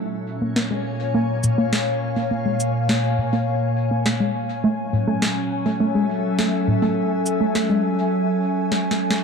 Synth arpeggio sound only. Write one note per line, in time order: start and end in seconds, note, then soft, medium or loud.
0.42 0.49 A#3 medium
0.56 0.69 A#3 medium
0.71 0.84 G#3 medium
1.14 1.28 A#3 loud
1.44 1.57 A#2 medium
1.58 1.72 A#3 loud
2.16 2.24 A#3 medium
2.31 2.44 A#3 medium
2.46 2.58 G#3 medium
2.89 3.03 A#3 loud
3.18 3.32 A#2 medium
3.33 3.47 A#3 loud
3.91 3.99 A#3 medium
4.06 4.19 A#3 medium
4.20 4.33 G#3 medium
4.64 4.78 A3 loud
4.93 5.07 A2 medium
5.08 5.21 A3 loud
5.66 5.74 A3 medium
5.80 5.93 A3 medium
5.95 6.08 G#3 medium
6.39 6.52 A3 medium
6.68 6.82 A2 medium
6.82 6.96 A3 loud
7.41 7.48 A3 medium
7.55 7.68 A3 medium
7.70 7.83 G#3 medium